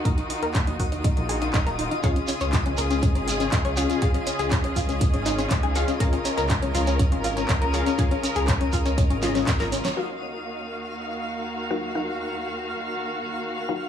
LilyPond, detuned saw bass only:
\new Staff \with { instrumentName = "Detuned saw bass" } { \clef bass \time 4/4 \key ees \minor \tempo 4 = 121 ees,16 r8 ees,8. ees,8. bes,,8. ees,,8. r16 | des,16 r8 des,8. des,8. aes,,8. des,8. r16 | des,16 r8 des,8. des,8. aes,,8. des,8. r16 | des,16 r8 des,8. des,8. aes,,8. des,8. r16 |
des,16 r8 des,8. des,8. aes,,8. aes,,8. r16 | r1 | r1 | }